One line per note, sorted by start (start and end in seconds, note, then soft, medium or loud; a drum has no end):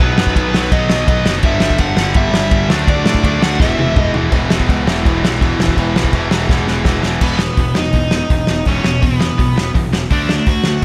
0.00 0.16 B1 loud
0.00 0.52 B2 medium
0.00 0.69 B2 medium
0.00 0.70 D#3 medium
0.00 0.53 F#3 loud
0.00 0.71 F#3 loud
0.00 0.71 B3 loud
0.00 0.54 B3 loud
0.00 0.72 D#4 loud
0.00 0.74 B4 medium
0.18 0.35 F#2 medium
0.18 snare loud
0.27 kick medium
0.36 0.53 B1 loud
0.36 kick loud
0.36 ride medium
0.54 0.71 B1 medium
0.54 1.06 B2 medium
0.54 1.07 F#3 medium
0.54 1.07 B3 medium
0.54 snare loud
0.70 0.89 B1 loud
0.70 1.42 B2 medium
0.70 1.43 D#3 medium
0.70 1.43 F#3 medium
0.70 1.44 B3 medium
0.70 1.44 D#4 medium
0.70 1.07 D#5 loud
0.70 kick loud
0.70 ride medium
0.89 1.07 B1 medium
0.89 snare loud
1.08 1.24 B1 medium
1.08 1.43 B2 medium
1.08 1.43 F#3 medium
1.08 1.45 B3 loud
1.08 1.33 D#5 medium
1.08 kick loud
1.08 ride medium
1.25 1.42 F#1 medium
1.25 snare loud
1.42 1.60 G1 medium
1.42 2.13 G2 medium
1.42 1.97 G2 loud
1.42 2.14 D3 loud
1.42 1.98 D3 loud
1.42 2.15 G3 loud
1.42 2.16 B3 loud
1.42 2.16 D4 loud
1.42 1.80 E5 loud
1.42 kick loud
1.42 ride medium
1.47 1.96 G3 loud
1.60 1.78 G1 medium
1.60 snare loud
1.70 kick medium
1.78 1.96 G1 loud
1.78 2.17 F#5 loud
1.78 kick loud
1.78 ride medium
1.96 2.14 G1 medium
1.96 2.49 G2 medium
1.96 2.51 D3 medium
1.96 2.51 G3 loud
1.96 snare loud
2.14 2.31 G1 loud
2.14 2.68 G2 medium
2.14 2.68 D3 medium
2.14 2.69 G3 medium
2.14 2.70 B3 medium
2.14 2.70 D4 medium
2.14 2.67 E5 loud
2.14 kick loud
2.14 ride medium
2.31 2.50 G1 medium
2.31 snare loud
2.50 2.68 G1 loud
2.50 2.68 G2 medium
2.50 2.67 D3 medium
2.50 2.69 G3 medium
2.50 kick loud
2.50 ride medium
2.68 2.87 D2 medium
2.68 3.22 D3 medium
2.68 3.41 D3 medium
2.68 3.41 F#3 medium
2.68 3.23 A3 loud
2.68 3.41 A3 loud
2.68 3.24 D4 medium
2.68 snare loud
2.72 3.40 D4 loud
2.87 3.04 D2 loud
2.87 3.24 D5 loud
2.87 kick loud
2.87 ride medium
3.04 3.23 A2 medium
3.04 snare loud
3.15 kick medium
3.23 3.40 D2 loud
3.23 3.59 D3 medium
3.23 3.60 A3 medium
3.23 3.60 D4 loud
3.23 3.42 D5 medium
3.23 kick loud
3.23 ride medium
3.41 3.59 D2 medium
3.41 3.58 D3 medium
3.41 3.59 F#3 medium
3.41 3.60 A3 medium
3.41 3.59 D4 medium
3.41 3.60 F#5 medium
3.41 snare loud
3.59 3.77 E1 loud
3.59 4.13 E2 medium
3.59 4.13 B2 loud
3.59 4.30 E3 loud
3.59 4.13 E3 loud
3.59 4.31 G#3 loud
3.59 4.32 B3 loud
3.59 4.33 E4 loud
3.59 3.98 E5 loud
3.59 kick loud
3.59 snare medium
3.77 3.95 E1 medium
3.77 high tom medium
3.96 4.13 E1 medium
3.96 4.12 D#5 loud
3.96 kick loud
3.96 mid tom loud
4.14 4.31 E1 medium
4.14 4.30 E2 medium
4.14 4.30 B2 medium
4.14 4.31 E3 medium
4.14 floor tom medium
4.31 4.50 E1 medium
4.31 4.48 E2 medium
4.31 4.48 B2 medium
4.31 4.89 E3 medium
4.31 4.49 E3 loud
4.31 4.88 G#3 medium
4.31 4.87 B3 medium
4.31 4.86 E4 medium
4.31 kick loud
4.31 crash medium
4.48 4.68 E1 medium
4.48 4.68 E2 medium
4.48 4.67 B2 loud
4.48 4.68 E3 medium
4.48 snare loud
4.60 kick medium
4.68 4.86 C#2 medium
4.68 4.86 E2 medium
4.68 4.86 B2 medium
4.68 4.87 E3 medium
4.68 kick loud
4.68 crash medium
4.86 5.04 E1 medium
4.86 5.04 E2 medium
4.86 5.04 B2 medium
4.86 5.05 E3 medium
4.86 5.76 E3 medium
4.86 5.77 G#3 medium
4.86 5.78 B3 medium
4.86 5.79 E4 medium
4.86 snare loud
5.05 5.21 E1 medium
5.05 5.22 E2 loud
5.05 5.22 B2 loud
5.05 5.23 E3 loud
5.05 kick loud
5.05 crash medium
5.21 5.39 B1 medium
5.21 5.40 E2 medium
5.21 5.40 B2 medium
5.21 5.41 E3 loud
5.21 snare loud
5.40 5.57 E1 medium
5.40 5.59 E2 medium
5.40 5.58 B2 medium
5.40 5.60 E3 loud
5.40 kick loud
5.40 crash medium
5.57 5.75 E1 medium
5.57 5.74 E2 medium
5.57 5.75 B2 medium
5.57 5.76 E3 medium
5.57 snare loud
5.68 kick medium
5.76 5.94 E1 loud
5.76 5.93 E2 loud
5.76 5.94 B2 loud
5.76 6.30 E3 medium
5.76 5.94 E3 loud
5.76 6.30 G#3 loud
5.76 6.31 B3 medium
5.76 6.30 E4 loud
5.76 kick medium
5.76 crash medium
5.94 6.12 B1 medium
5.94 6.11 E2 medium
5.94 6.12 B2 medium
5.94 6.12 E3 loud
5.94 snare loud
6.04 kick medium
6.12 6.30 E1 loud
6.12 6.29 E2 medium
6.12 6.30 B2 medium
6.12 6.30 E3 medium
6.12 kick loud
6.12 crash medium
6.30 6.49 E1 medium
6.30 6.48 E2 medium
6.30 6.49 B2 medium
6.30 6.49 E3 medium
6.30 7.22 G#3 medium
6.30 7.21 B3 medium
6.30 7.21 E4 medium
6.30 snare loud
6.34 7.22 E3 medium
6.49 6.67 E1 medium
6.49 6.65 E2 loud
6.49 6.66 B2 loud
6.49 6.67 E3 loud
6.49 kick loud
6.49 snare medium
6.67 6.84 E1 medium
6.67 6.85 E2 medium
6.67 6.86 B2 medium
6.67 6.87 E3 loud
6.67 snare medium
6.85 7.03 E1 medium
6.85 7.02 E2 medium
6.85 7.03 B2 medium
6.85 7.03 E3 medium
6.85 kick loud
6.85 snare medium
7.03 7.20 E1 medium
7.03 7.20 E2 medium
7.03 7.21 B2 medium
7.03 7.21 E3 medium
7.03 snare medium
7.21 7.48 E1 medium
7.21 7.37 E2 medium
7.21 7.37 B2 medium
7.21 7.39 E3 medium
7.21 7.79 B3 medium
7.21 kick loud
7.21 crash loud
7.38 7.55 E2 medium
7.38 7.56 B2 medium
7.38 snare loud
7.57 7.71 E1 medium
7.57 7.74 E2 medium
7.57 7.74 B2 medium
7.57 kick loud
7.57 open hi-hat medium
7.75 7.89 E1 medium
7.75 7.92 E2 medium
7.75 7.92 B2 medium
7.75 8.67 D#4 medium
7.75 snare loud
7.93 8.21 E1 medium
7.93 8.10 E2 medium
7.93 8.10 B2 medium
7.93 kick medium
7.93 open hi-hat medium
8.11 8.28 E2 medium
8.11 8.29 B2 medium
8.11 snare loud
8.30 8.44 E1 medium
8.30 8.47 E2 medium
8.30 8.47 B2 medium
8.30 kick loud
8.30 open hi-hat medium
8.47 8.62 E1 medium
8.47 8.65 E2 medium
8.47 8.66 B2 medium
8.47 snare loud
8.65 8.80 E1 medium
8.65 8.84 E2 medium
8.65 8.84 B2 medium
8.65 9.04 C#4 medium
8.65 kick medium
8.65 open hi-hat soft
8.69 8.85 E3 medium
8.84 8.98 E1 medium
8.84 9.01 E2 medium
8.84 9.01 B2 medium
8.84 snare loud
9.02 9.30 E1 medium
9.02 9.18 E2 medium
9.02 9.19 B2 medium
9.02 9.71 B3 medium
9.02 kick loud
9.02 open hi-hat medium
9.19 9.36 E2 medium
9.19 9.37 B2 medium
9.19 snare loud
9.39 9.53 B1 medium
9.39 9.55 E2 medium
9.39 9.55 B2 medium
9.39 kick loud
9.39 open hi-hat medium
9.57 9.70 E1 medium
9.57 9.73 E2 medium
9.57 9.73 B2 medium
9.57 snare loud
9.74 9.89 B1 medium
9.74 9.91 E2 medium
9.74 9.91 B2 medium
9.74 kick loud
9.74 open hi-hat medium
9.92 10.06 E1 medium
9.92 10.10 E2 medium
9.92 10.09 B2 medium
9.92 snare loud
10.10 10.38 D2 medium
10.10 10.28 D3 medium
10.10 10.28 A3 medium
10.10 10.49 D4 loud
10.10 10.29 D4 medium
10.10 kick loud
10.10 open hi-hat medium
10.29 10.46 D3 medium
10.29 10.46 A3 medium
10.29 snare loud
10.46 10.61 D2 medium
10.46 10.64 D3 medium
10.46 10.64 A3 medium
10.46 10.85 F#4 loud
10.46 kick loud
10.46 open hi-hat medium
10.64 10.78 D2 medium
10.64 10.81 D3 medium
10.64 10.82 A3 medium
10.64 snare loud